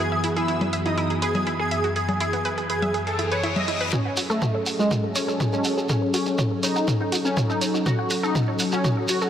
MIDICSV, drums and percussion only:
0, 0, Header, 1, 3, 480
1, 0, Start_track
1, 0, Tempo, 491803
1, 1912, Time_signature, 4, 2, 24, 8
1, 9074, End_track
2, 0, Start_track
2, 0, Title_t, "Shekere"
2, 3831, Note_on_c, 9, 82, 50
2, 3929, Note_off_c, 9, 82, 0
2, 4067, Note_on_c, 9, 82, 80
2, 4165, Note_off_c, 9, 82, 0
2, 4199, Note_on_c, 9, 82, 37
2, 4297, Note_off_c, 9, 82, 0
2, 4311, Note_on_c, 9, 82, 47
2, 4408, Note_off_c, 9, 82, 0
2, 4551, Note_on_c, 9, 82, 81
2, 4648, Note_off_c, 9, 82, 0
2, 4684, Note_on_c, 9, 82, 37
2, 4782, Note_off_c, 9, 82, 0
2, 4795, Note_on_c, 9, 82, 45
2, 4893, Note_off_c, 9, 82, 0
2, 5032, Note_on_c, 9, 82, 91
2, 5129, Note_off_c, 9, 82, 0
2, 5160, Note_on_c, 9, 82, 34
2, 5258, Note_off_c, 9, 82, 0
2, 5276, Note_on_c, 9, 82, 48
2, 5373, Note_off_c, 9, 82, 0
2, 5396, Note_on_c, 9, 82, 35
2, 5493, Note_off_c, 9, 82, 0
2, 5508, Note_on_c, 9, 82, 79
2, 5606, Note_off_c, 9, 82, 0
2, 5638, Note_on_c, 9, 82, 35
2, 5735, Note_off_c, 9, 82, 0
2, 5749, Note_on_c, 9, 82, 53
2, 5847, Note_off_c, 9, 82, 0
2, 5993, Note_on_c, 9, 82, 85
2, 6090, Note_off_c, 9, 82, 0
2, 6107, Note_on_c, 9, 82, 42
2, 6205, Note_off_c, 9, 82, 0
2, 6230, Note_on_c, 9, 82, 53
2, 6327, Note_off_c, 9, 82, 0
2, 6475, Note_on_c, 9, 82, 94
2, 6572, Note_off_c, 9, 82, 0
2, 6597, Note_on_c, 9, 82, 42
2, 6694, Note_off_c, 9, 82, 0
2, 6714, Note_on_c, 9, 82, 50
2, 6811, Note_off_c, 9, 82, 0
2, 6959, Note_on_c, 9, 82, 94
2, 7057, Note_off_c, 9, 82, 0
2, 7076, Note_on_c, 9, 82, 38
2, 7173, Note_off_c, 9, 82, 0
2, 7195, Note_on_c, 9, 82, 48
2, 7292, Note_off_c, 9, 82, 0
2, 7319, Note_on_c, 9, 82, 34
2, 7416, Note_off_c, 9, 82, 0
2, 7438, Note_on_c, 9, 82, 96
2, 7535, Note_off_c, 9, 82, 0
2, 7560, Note_on_c, 9, 82, 37
2, 7657, Note_off_c, 9, 82, 0
2, 7673, Note_on_c, 9, 82, 49
2, 7771, Note_off_c, 9, 82, 0
2, 7908, Note_on_c, 9, 82, 87
2, 8005, Note_off_c, 9, 82, 0
2, 8040, Note_on_c, 9, 82, 37
2, 8138, Note_off_c, 9, 82, 0
2, 8155, Note_on_c, 9, 82, 56
2, 8252, Note_off_c, 9, 82, 0
2, 8385, Note_on_c, 9, 82, 96
2, 8482, Note_off_c, 9, 82, 0
2, 8509, Note_on_c, 9, 82, 42
2, 8607, Note_off_c, 9, 82, 0
2, 8634, Note_on_c, 9, 82, 53
2, 8731, Note_off_c, 9, 82, 0
2, 8865, Note_on_c, 9, 82, 93
2, 8963, Note_off_c, 9, 82, 0
2, 8991, Note_on_c, 9, 82, 37
2, 9074, Note_off_c, 9, 82, 0
2, 9074, End_track
3, 0, Start_track
3, 0, Title_t, "Drums"
3, 232, Note_on_c, 9, 42, 68
3, 329, Note_off_c, 9, 42, 0
3, 356, Note_on_c, 9, 42, 31
3, 454, Note_off_c, 9, 42, 0
3, 472, Note_on_c, 9, 42, 41
3, 570, Note_off_c, 9, 42, 0
3, 596, Note_on_c, 9, 42, 28
3, 596, Note_on_c, 9, 64, 89
3, 694, Note_off_c, 9, 42, 0
3, 694, Note_off_c, 9, 64, 0
3, 712, Note_on_c, 9, 42, 68
3, 809, Note_off_c, 9, 42, 0
3, 836, Note_on_c, 9, 42, 29
3, 934, Note_off_c, 9, 42, 0
3, 952, Note_on_c, 9, 42, 39
3, 1049, Note_off_c, 9, 42, 0
3, 1076, Note_on_c, 9, 42, 28
3, 1174, Note_off_c, 9, 42, 0
3, 1192, Note_on_c, 9, 42, 70
3, 1290, Note_off_c, 9, 42, 0
3, 1316, Note_on_c, 9, 42, 29
3, 1316, Note_on_c, 9, 64, 86
3, 1414, Note_off_c, 9, 42, 0
3, 1414, Note_off_c, 9, 64, 0
3, 1432, Note_on_c, 9, 42, 40
3, 1529, Note_off_c, 9, 42, 0
3, 1672, Note_on_c, 9, 42, 70
3, 1769, Note_off_c, 9, 42, 0
3, 1796, Note_on_c, 9, 42, 29
3, 1894, Note_off_c, 9, 42, 0
3, 1912, Note_on_c, 9, 42, 42
3, 2009, Note_off_c, 9, 42, 0
3, 2036, Note_on_c, 9, 42, 29
3, 2036, Note_on_c, 9, 64, 86
3, 2133, Note_off_c, 9, 42, 0
3, 2133, Note_off_c, 9, 64, 0
3, 2152, Note_on_c, 9, 42, 73
3, 2249, Note_off_c, 9, 42, 0
3, 2276, Note_on_c, 9, 42, 31
3, 2374, Note_off_c, 9, 42, 0
3, 2392, Note_on_c, 9, 42, 41
3, 2489, Note_off_c, 9, 42, 0
3, 2516, Note_on_c, 9, 42, 30
3, 2614, Note_off_c, 9, 42, 0
3, 2632, Note_on_c, 9, 42, 71
3, 2729, Note_off_c, 9, 42, 0
3, 2756, Note_on_c, 9, 42, 31
3, 2756, Note_on_c, 9, 64, 87
3, 2854, Note_off_c, 9, 42, 0
3, 2854, Note_off_c, 9, 64, 0
3, 2872, Note_on_c, 9, 42, 42
3, 2969, Note_off_c, 9, 42, 0
3, 2996, Note_on_c, 9, 42, 29
3, 3093, Note_off_c, 9, 42, 0
3, 3112, Note_on_c, 9, 42, 71
3, 3209, Note_off_c, 9, 42, 0
3, 3236, Note_on_c, 9, 42, 30
3, 3333, Note_off_c, 9, 42, 0
3, 3352, Note_on_c, 9, 42, 42
3, 3449, Note_off_c, 9, 42, 0
3, 3476, Note_on_c, 9, 42, 30
3, 3476, Note_on_c, 9, 64, 89
3, 3574, Note_off_c, 9, 42, 0
3, 3574, Note_off_c, 9, 64, 0
3, 3592, Note_on_c, 9, 42, 75
3, 3690, Note_off_c, 9, 42, 0
3, 3716, Note_on_c, 9, 42, 30
3, 3814, Note_off_c, 9, 42, 0
3, 3832, Note_on_c, 9, 36, 111
3, 3832, Note_on_c, 9, 47, 45
3, 3929, Note_off_c, 9, 36, 0
3, 3930, Note_off_c, 9, 47, 0
3, 4072, Note_on_c, 9, 46, 97
3, 4169, Note_off_c, 9, 46, 0
3, 4312, Note_on_c, 9, 36, 107
3, 4312, Note_on_c, 9, 47, 48
3, 4409, Note_off_c, 9, 36, 0
3, 4409, Note_off_c, 9, 47, 0
3, 4552, Note_on_c, 9, 46, 96
3, 4649, Note_off_c, 9, 46, 0
3, 4792, Note_on_c, 9, 36, 105
3, 4792, Note_on_c, 9, 47, 47
3, 4889, Note_off_c, 9, 36, 0
3, 4889, Note_off_c, 9, 47, 0
3, 5032, Note_on_c, 9, 46, 98
3, 5129, Note_off_c, 9, 46, 0
3, 5272, Note_on_c, 9, 36, 112
3, 5272, Note_on_c, 9, 47, 49
3, 5369, Note_off_c, 9, 36, 0
3, 5369, Note_off_c, 9, 47, 0
3, 5511, Note_on_c, 9, 46, 101
3, 5609, Note_off_c, 9, 46, 0
3, 5752, Note_on_c, 9, 36, 114
3, 5752, Note_on_c, 9, 47, 50
3, 5849, Note_off_c, 9, 36, 0
3, 5849, Note_off_c, 9, 47, 0
3, 5992, Note_on_c, 9, 46, 101
3, 6090, Note_off_c, 9, 46, 0
3, 6232, Note_on_c, 9, 36, 116
3, 6232, Note_on_c, 9, 47, 51
3, 6329, Note_off_c, 9, 36, 0
3, 6329, Note_off_c, 9, 47, 0
3, 6472, Note_on_c, 9, 46, 100
3, 6569, Note_off_c, 9, 46, 0
3, 6712, Note_on_c, 9, 36, 112
3, 6712, Note_on_c, 9, 47, 54
3, 6809, Note_off_c, 9, 36, 0
3, 6809, Note_off_c, 9, 47, 0
3, 6952, Note_on_c, 9, 46, 103
3, 7049, Note_off_c, 9, 46, 0
3, 7191, Note_on_c, 9, 36, 117
3, 7192, Note_on_c, 9, 47, 55
3, 7289, Note_off_c, 9, 36, 0
3, 7289, Note_off_c, 9, 47, 0
3, 7431, Note_on_c, 9, 46, 104
3, 7529, Note_off_c, 9, 46, 0
3, 7671, Note_on_c, 9, 36, 120
3, 7671, Note_on_c, 9, 47, 56
3, 7769, Note_off_c, 9, 36, 0
3, 7769, Note_off_c, 9, 47, 0
3, 7911, Note_on_c, 9, 46, 106
3, 8009, Note_off_c, 9, 46, 0
3, 8151, Note_on_c, 9, 36, 115
3, 8152, Note_on_c, 9, 47, 59
3, 8249, Note_off_c, 9, 36, 0
3, 8249, Note_off_c, 9, 47, 0
3, 8392, Note_on_c, 9, 46, 106
3, 8489, Note_off_c, 9, 46, 0
3, 8631, Note_on_c, 9, 36, 113
3, 8632, Note_on_c, 9, 47, 60
3, 8729, Note_off_c, 9, 36, 0
3, 8729, Note_off_c, 9, 47, 0
3, 8871, Note_on_c, 9, 46, 105
3, 8969, Note_off_c, 9, 46, 0
3, 9074, End_track
0, 0, End_of_file